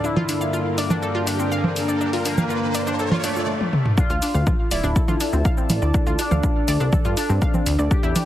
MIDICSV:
0, 0, Header, 1, 8, 480
1, 0, Start_track
1, 0, Key_signature, -1, "minor"
1, 0, Tempo, 491803
1, 40, Time_signature, 4, 2, 24, 8
1, 8053, End_track
2, 0, Start_track
2, 0, Title_t, "Ambient pad"
2, 0, Program_c, 0, 92
2, 0, Note_on_c, 0, 62, 82
2, 0, Note_on_c, 0, 74, 91
2, 110, Note_on_c, 0, 70, 83
2, 257, Note_on_c, 0, 79, 80
2, 1264, Note_on_c, 0, 82, 88
2, 1461, Note_off_c, 0, 74, 0
2, 3399, Note_off_c, 0, 62, 0
2, 3399, Note_off_c, 0, 82, 0
2, 3401, Note_off_c, 0, 70, 0
2, 3402, Note_off_c, 0, 79, 0
2, 4319, Note_on_c, 0, 69, 83
2, 4562, Note_on_c, 0, 81, 72
2, 4813, Note_on_c, 0, 74, 96
2, 7720, Note_off_c, 0, 69, 0
2, 7720, Note_on_c, 0, 64, 87
2, 7721, Note_off_c, 0, 74, 0
2, 7721, Note_off_c, 0, 81, 0
2, 8053, Note_off_c, 0, 64, 0
2, 8053, End_track
3, 0, Start_track
3, 0, Title_t, "Synth arpeggio sound"
3, 0, Program_c, 1, 84
3, 38, Note_on_c, 1, 62, 80
3, 117, Note_off_c, 1, 62, 0
3, 159, Note_on_c, 1, 65, 102
3, 238, Note_off_c, 1, 65, 0
3, 279, Note_on_c, 1, 62, 79
3, 358, Note_off_c, 1, 62, 0
3, 399, Note_on_c, 1, 77, 73
3, 446, Note_off_c, 1, 77, 0
3, 519, Note_on_c, 1, 65, 85
3, 598, Note_off_c, 1, 65, 0
3, 760, Note_on_c, 1, 74, 97
3, 838, Note_off_c, 1, 74, 0
3, 880, Note_on_c, 1, 62, 105
3, 927, Note_off_c, 1, 62, 0
3, 1000, Note_on_c, 1, 69, 86
3, 1078, Note_off_c, 1, 69, 0
3, 1120, Note_on_c, 1, 65, 101
3, 1198, Note_off_c, 1, 65, 0
3, 1240, Note_on_c, 1, 62, 79
3, 1318, Note_off_c, 1, 62, 0
3, 1360, Note_on_c, 1, 60, 77
3, 1438, Note_off_c, 1, 60, 0
3, 1479, Note_on_c, 1, 77, 110
3, 1594, Note_off_c, 1, 77, 0
3, 1599, Note_on_c, 1, 60, 75
3, 1678, Note_off_c, 1, 60, 0
3, 1839, Note_on_c, 1, 74, 77
3, 1953, Note_off_c, 1, 74, 0
3, 1960, Note_on_c, 1, 62, 86
3, 2038, Note_off_c, 1, 62, 0
3, 2080, Note_on_c, 1, 65, 104
3, 2158, Note_off_c, 1, 65, 0
3, 2201, Note_on_c, 1, 62, 75
3, 2279, Note_off_c, 1, 62, 0
3, 2321, Note_on_c, 1, 77, 73
3, 2368, Note_off_c, 1, 77, 0
3, 2441, Note_on_c, 1, 65, 87
3, 2519, Note_off_c, 1, 65, 0
3, 2680, Note_on_c, 1, 74, 103
3, 2758, Note_off_c, 1, 74, 0
3, 2801, Note_on_c, 1, 62, 103
3, 2847, Note_off_c, 1, 62, 0
3, 2921, Note_on_c, 1, 69, 88
3, 2998, Note_off_c, 1, 69, 0
3, 3040, Note_on_c, 1, 65, 106
3, 3118, Note_off_c, 1, 65, 0
3, 3160, Note_on_c, 1, 62, 102
3, 3274, Note_off_c, 1, 62, 0
3, 3281, Note_on_c, 1, 65, 81
3, 3394, Note_off_c, 1, 65, 0
3, 3881, Note_on_c, 1, 62, 81
3, 3959, Note_off_c, 1, 62, 0
3, 4001, Note_on_c, 1, 65, 105
3, 4078, Note_off_c, 1, 65, 0
3, 4120, Note_on_c, 1, 62, 75
3, 4198, Note_off_c, 1, 62, 0
3, 4240, Note_on_c, 1, 77, 75
3, 4287, Note_off_c, 1, 77, 0
3, 4360, Note_on_c, 1, 65, 82
3, 4438, Note_off_c, 1, 65, 0
3, 4600, Note_on_c, 1, 74, 99
3, 4678, Note_off_c, 1, 74, 0
3, 4719, Note_on_c, 1, 62, 108
3, 4766, Note_off_c, 1, 62, 0
3, 4840, Note_on_c, 1, 69, 88
3, 4918, Note_off_c, 1, 69, 0
3, 4959, Note_on_c, 1, 65, 103
3, 5038, Note_off_c, 1, 65, 0
3, 5080, Note_on_c, 1, 62, 76
3, 5158, Note_off_c, 1, 62, 0
3, 5201, Note_on_c, 1, 60, 78
3, 5278, Note_off_c, 1, 60, 0
3, 5320, Note_on_c, 1, 77, 107
3, 5434, Note_off_c, 1, 77, 0
3, 5440, Note_on_c, 1, 60, 75
3, 5518, Note_off_c, 1, 60, 0
3, 5680, Note_on_c, 1, 74, 76
3, 5794, Note_off_c, 1, 74, 0
3, 5800, Note_on_c, 1, 62, 84
3, 5878, Note_off_c, 1, 62, 0
3, 5920, Note_on_c, 1, 65, 107
3, 5998, Note_off_c, 1, 65, 0
3, 6040, Note_on_c, 1, 62, 76
3, 6118, Note_off_c, 1, 62, 0
3, 6160, Note_on_c, 1, 77, 77
3, 6207, Note_off_c, 1, 77, 0
3, 6280, Note_on_c, 1, 65, 86
3, 6358, Note_off_c, 1, 65, 0
3, 6520, Note_on_c, 1, 74, 102
3, 6598, Note_off_c, 1, 74, 0
3, 6639, Note_on_c, 1, 62, 107
3, 6686, Note_off_c, 1, 62, 0
3, 6759, Note_on_c, 1, 69, 83
3, 6838, Note_off_c, 1, 69, 0
3, 6879, Note_on_c, 1, 65, 101
3, 6958, Note_off_c, 1, 65, 0
3, 6998, Note_on_c, 1, 62, 79
3, 7077, Note_off_c, 1, 62, 0
3, 7119, Note_on_c, 1, 60, 79
3, 7198, Note_off_c, 1, 60, 0
3, 7239, Note_on_c, 1, 77, 104
3, 7353, Note_off_c, 1, 77, 0
3, 7359, Note_on_c, 1, 60, 75
3, 7437, Note_off_c, 1, 60, 0
3, 7599, Note_on_c, 1, 74, 78
3, 7714, Note_off_c, 1, 74, 0
3, 7719, Note_on_c, 1, 62, 86
3, 7797, Note_off_c, 1, 62, 0
3, 7838, Note_on_c, 1, 64, 110
3, 7917, Note_off_c, 1, 64, 0
3, 7959, Note_on_c, 1, 62, 75
3, 8038, Note_off_c, 1, 62, 0
3, 8053, End_track
4, 0, Start_track
4, 0, Title_t, "Analog polysynth"
4, 0, Program_c, 2, 90
4, 39, Note_on_c, 2, 64, 102
4, 663, Note_off_c, 2, 64, 0
4, 758, Note_on_c, 2, 62, 110
4, 2103, Note_off_c, 2, 62, 0
4, 2200, Note_on_c, 2, 58, 112
4, 3064, Note_off_c, 2, 58, 0
4, 3160, Note_on_c, 2, 57, 95
4, 3400, Note_off_c, 2, 57, 0
4, 3880, Note_on_c, 2, 65, 105
4, 4504, Note_off_c, 2, 65, 0
4, 4601, Note_on_c, 2, 64, 110
4, 5944, Note_off_c, 2, 64, 0
4, 6040, Note_on_c, 2, 62, 111
4, 6904, Note_off_c, 2, 62, 0
4, 6999, Note_on_c, 2, 62, 100
4, 7624, Note_off_c, 2, 62, 0
4, 7718, Note_on_c, 2, 67, 106
4, 8053, Note_off_c, 2, 67, 0
4, 8053, End_track
5, 0, Start_track
5, 0, Title_t, "Analog synth pad"
5, 0, Program_c, 3, 89
5, 38, Note_on_c, 3, 50, 72
5, 38, Note_on_c, 3, 58, 85
5, 39, Note_on_c, 3, 43, 81
5, 3365, Note_off_c, 3, 50, 0
5, 3365, Note_off_c, 3, 58, 0
5, 3366, Note_off_c, 3, 43, 0
5, 8053, End_track
6, 0, Start_track
6, 0, Title_t, "Analog synth bass"
6, 0, Program_c, 4, 38
6, 4000, Note_on_c, 4, 38, 75
6, 4097, Note_off_c, 4, 38, 0
6, 4240, Note_on_c, 4, 38, 85
6, 4338, Note_off_c, 4, 38, 0
6, 4599, Note_on_c, 4, 26, 87
6, 4697, Note_off_c, 4, 26, 0
6, 4720, Note_on_c, 4, 26, 86
6, 4817, Note_off_c, 4, 26, 0
6, 4960, Note_on_c, 4, 38, 79
6, 5058, Note_off_c, 4, 38, 0
6, 5200, Note_on_c, 4, 38, 88
6, 5297, Note_off_c, 4, 38, 0
6, 5560, Note_on_c, 4, 33, 95
6, 5658, Note_off_c, 4, 33, 0
6, 5680, Note_on_c, 4, 38, 82
6, 5778, Note_off_c, 4, 38, 0
6, 5920, Note_on_c, 4, 38, 73
6, 6018, Note_off_c, 4, 38, 0
6, 6159, Note_on_c, 4, 38, 82
6, 6257, Note_off_c, 4, 38, 0
6, 6519, Note_on_c, 4, 38, 87
6, 6617, Note_off_c, 4, 38, 0
6, 6640, Note_on_c, 4, 36, 86
6, 6737, Note_off_c, 4, 36, 0
6, 6880, Note_on_c, 4, 43, 79
6, 6978, Note_off_c, 4, 43, 0
6, 7120, Note_on_c, 4, 43, 81
6, 7218, Note_off_c, 4, 43, 0
6, 7480, Note_on_c, 4, 38, 93
6, 7578, Note_off_c, 4, 38, 0
6, 7600, Note_on_c, 4, 38, 83
6, 7698, Note_off_c, 4, 38, 0
6, 7839, Note_on_c, 4, 40, 75
6, 7937, Note_off_c, 4, 40, 0
6, 8053, End_track
7, 0, Start_track
7, 0, Title_t, "Riser"
7, 0, Program_c, 5, 103
7, 0, Note_on_c, 5, 60, 78
7, 3400, Note_off_c, 5, 60, 0
7, 8053, End_track
8, 0, Start_track
8, 0, Title_t, "Drums"
8, 40, Note_on_c, 9, 82, 33
8, 138, Note_off_c, 9, 82, 0
8, 160, Note_on_c, 9, 64, 95
8, 258, Note_off_c, 9, 64, 0
8, 281, Note_on_c, 9, 46, 106
8, 281, Note_on_c, 9, 82, 81
8, 378, Note_off_c, 9, 46, 0
8, 378, Note_off_c, 9, 82, 0
8, 401, Note_on_c, 9, 82, 42
8, 499, Note_off_c, 9, 82, 0
8, 520, Note_on_c, 9, 82, 33
8, 618, Note_off_c, 9, 82, 0
8, 760, Note_on_c, 9, 46, 100
8, 760, Note_on_c, 9, 82, 77
8, 858, Note_off_c, 9, 46, 0
8, 858, Note_off_c, 9, 82, 0
8, 881, Note_on_c, 9, 64, 98
8, 881, Note_on_c, 9, 82, 46
8, 979, Note_off_c, 9, 64, 0
8, 979, Note_off_c, 9, 82, 0
8, 1001, Note_on_c, 9, 82, 34
8, 1099, Note_off_c, 9, 82, 0
8, 1241, Note_on_c, 9, 46, 108
8, 1241, Note_on_c, 9, 82, 79
8, 1339, Note_off_c, 9, 46, 0
8, 1339, Note_off_c, 9, 82, 0
8, 1361, Note_on_c, 9, 82, 44
8, 1459, Note_off_c, 9, 82, 0
8, 1480, Note_on_c, 9, 82, 33
8, 1578, Note_off_c, 9, 82, 0
8, 1600, Note_on_c, 9, 64, 99
8, 1698, Note_off_c, 9, 64, 0
8, 1721, Note_on_c, 9, 46, 98
8, 1721, Note_on_c, 9, 82, 78
8, 1818, Note_off_c, 9, 46, 0
8, 1818, Note_off_c, 9, 82, 0
8, 1841, Note_on_c, 9, 82, 43
8, 1939, Note_off_c, 9, 82, 0
8, 1961, Note_on_c, 9, 82, 34
8, 2059, Note_off_c, 9, 82, 0
8, 2081, Note_on_c, 9, 46, 60
8, 2178, Note_off_c, 9, 46, 0
8, 2200, Note_on_c, 9, 46, 109
8, 2200, Note_on_c, 9, 82, 85
8, 2298, Note_off_c, 9, 46, 0
8, 2298, Note_off_c, 9, 82, 0
8, 2320, Note_on_c, 9, 64, 98
8, 2320, Note_on_c, 9, 82, 48
8, 2417, Note_off_c, 9, 64, 0
8, 2417, Note_off_c, 9, 82, 0
8, 2439, Note_on_c, 9, 82, 35
8, 2537, Note_off_c, 9, 82, 0
8, 2680, Note_on_c, 9, 46, 105
8, 2680, Note_on_c, 9, 82, 84
8, 2777, Note_off_c, 9, 46, 0
8, 2777, Note_off_c, 9, 82, 0
8, 2801, Note_on_c, 9, 82, 47
8, 2898, Note_off_c, 9, 82, 0
8, 2920, Note_on_c, 9, 82, 37
8, 3018, Note_off_c, 9, 82, 0
8, 3039, Note_on_c, 9, 64, 96
8, 3137, Note_off_c, 9, 64, 0
8, 3159, Note_on_c, 9, 46, 104
8, 3159, Note_on_c, 9, 82, 82
8, 3257, Note_off_c, 9, 46, 0
8, 3257, Note_off_c, 9, 82, 0
8, 3280, Note_on_c, 9, 82, 44
8, 3378, Note_off_c, 9, 82, 0
8, 3521, Note_on_c, 9, 48, 51
8, 3618, Note_off_c, 9, 48, 0
8, 3640, Note_on_c, 9, 47, 78
8, 3738, Note_off_c, 9, 47, 0
8, 3761, Note_on_c, 9, 45, 81
8, 3859, Note_off_c, 9, 45, 0
8, 3880, Note_on_c, 9, 36, 120
8, 3881, Note_on_c, 9, 82, 49
8, 3978, Note_off_c, 9, 36, 0
8, 3979, Note_off_c, 9, 82, 0
8, 4000, Note_on_c, 9, 82, 32
8, 4098, Note_off_c, 9, 82, 0
8, 4120, Note_on_c, 9, 46, 114
8, 4120, Note_on_c, 9, 82, 86
8, 4217, Note_off_c, 9, 46, 0
8, 4217, Note_off_c, 9, 82, 0
8, 4241, Note_on_c, 9, 82, 37
8, 4338, Note_off_c, 9, 82, 0
8, 4360, Note_on_c, 9, 36, 118
8, 4360, Note_on_c, 9, 64, 94
8, 4360, Note_on_c, 9, 82, 47
8, 4457, Note_off_c, 9, 64, 0
8, 4457, Note_off_c, 9, 82, 0
8, 4458, Note_off_c, 9, 36, 0
8, 4600, Note_on_c, 9, 46, 104
8, 4600, Note_on_c, 9, 82, 83
8, 4697, Note_off_c, 9, 46, 0
8, 4697, Note_off_c, 9, 82, 0
8, 4720, Note_on_c, 9, 82, 35
8, 4818, Note_off_c, 9, 82, 0
8, 4840, Note_on_c, 9, 36, 118
8, 4840, Note_on_c, 9, 82, 50
8, 4937, Note_off_c, 9, 36, 0
8, 4937, Note_off_c, 9, 82, 0
8, 4959, Note_on_c, 9, 64, 96
8, 4959, Note_on_c, 9, 82, 33
8, 5057, Note_off_c, 9, 64, 0
8, 5057, Note_off_c, 9, 82, 0
8, 5079, Note_on_c, 9, 46, 107
8, 5079, Note_on_c, 9, 82, 86
8, 5177, Note_off_c, 9, 46, 0
8, 5177, Note_off_c, 9, 82, 0
8, 5200, Note_on_c, 9, 82, 35
8, 5298, Note_off_c, 9, 82, 0
8, 5320, Note_on_c, 9, 36, 119
8, 5320, Note_on_c, 9, 82, 47
8, 5417, Note_off_c, 9, 36, 0
8, 5417, Note_off_c, 9, 82, 0
8, 5440, Note_on_c, 9, 82, 33
8, 5538, Note_off_c, 9, 82, 0
8, 5560, Note_on_c, 9, 46, 100
8, 5560, Note_on_c, 9, 64, 93
8, 5560, Note_on_c, 9, 82, 81
8, 5657, Note_off_c, 9, 46, 0
8, 5657, Note_off_c, 9, 64, 0
8, 5657, Note_off_c, 9, 82, 0
8, 5680, Note_on_c, 9, 82, 34
8, 5778, Note_off_c, 9, 82, 0
8, 5800, Note_on_c, 9, 36, 127
8, 5800, Note_on_c, 9, 82, 49
8, 5897, Note_off_c, 9, 36, 0
8, 5897, Note_off_c, 9, 82, 0
8, 5920, Note_on_c, 9, 82, 32
8, 6017, Note_off_c, 9, 82, 0
8, 6039, Note_on_c, 9, 46, 112
8, 6039, Note_on_c, 9, 82, 83
8, 6137, Note_off_c, 9, 46, 0
8, 6137, Note_off_c, 9, 82, 0
8, 6160, Note_on_c, 9, 64, 86
8, 6160, Note_on_c, 9, 82, 35
8, 6258, Note_off_c, 9, 64, 0
8, 6258, Note_off_c, 9, 82, 0
8, 6279, Note_on_c, 9, 82, 49
8, 6280, Note_on_c, 9, 36, 127
8, 6377, Note_off_c, 9, 36, 0
8, 6377, Note_off_c, 9, 82, 0
8, 6519, Note_on_c, 9, 46, 114
8, 6519, Note_on_c, 9, 82, 88
8, 6617, Note_off_c, 9, 46, 0
8, 6617, Note_off_c, 9, 82, 0
8, 6640, Note_on_c, 9, 82, 36
8, 6737, Note_off_c, 9, 82, 0
8, 6759, Note_on_c, 9, 64, 95
8, 6759, Note_on_c, 9, 82, 49
8, 6760, Note_on_c, 9, 36, 124
8, 6856, Note_off_c, 9, 64, 0
8, 6856, Note_off_c, 9, 82, 0
8, 6857, Note_off_c, 9, 36, 0
8, 6879, Note_on_c, 9, 82, 34
8, 6976, Note_off_c, 9, 82, 0
8, 6998, Note_on_c, 9, 46, 114
8, 6998, Note_on_c, 9, 82, 84
8, 7096, Note_off_c, 9, 46, 0
8, 7096, Note_off_c, 9, 82, 0
8, 7119, Note_on_c, 9, 82, 35
8, 7217, Note_off_c, 9, 82, 0
8, 7239, Note_on_c, 9, 36, 119
8, 7239, Note_on_c, 9, 82, 49
8, 7337, Note_off_c, 9, 36, 0
8, 7337, Note_off_c, 9, 82, 0
8, 7360, Note_on_c, 9, 64, 89
8, 7360, Note_on_c, 9, 82, 32
8, 7457, Note_off_c, 9, 64, 0
8, 7457, Note_off_c, 9, 82, 0
8, 7480, Note_on_c, 9, 46, 109
8, 7480, Note_on_c, 9, 82, 84
8, 7577, Note_off_c, 9, 46, 0
8, 7577, Note_off_c, 9, 82, 0
8, 7601, Note_on_c, 9, 82, 35
8, 7699, Note_off_c, 9, 82, 0
8, 7719, Note_on_c, 9, 36, 127
8, 7721, Note_on_c, 9, 82, 46
8, 7817, Note_off_c, 9, 36, 0
8, 7818, Note_off_c, 9, 82, 0
8, 7840, Note_on_c, 9, 82, 31
8, 7938, Note_off_c, 9, 82, 0
8, 7960, Note_on_c, 9, 46, 117
8, 7960, Note_on_c, 9, 64, 89
8, 7960, Note_on_c, 9, 82, 83
8, 8053, Note_off_c, 9, 46, 0
8, 8053, Note_off_c, 9, 64, 0
8, 8053, Note_off_c, 9, 82, 0
8, 8053, End_track
0, 0, End_of_file